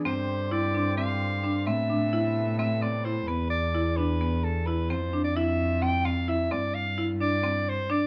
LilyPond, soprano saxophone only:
\new Staff \with { instrumentName = "Soprano saxophone" } { \time 7/8 \key e \phrygian \tempo 4 = 130 c''4 d''4 f''4. | e''2 e''8 d''8 c''8 | b'8 d''4 b'4 a'8 b'8 | c''8. d''16 e''4 g''8 f''8 e''8 |
d''8 f''4 d''4 c''8 d''8 | }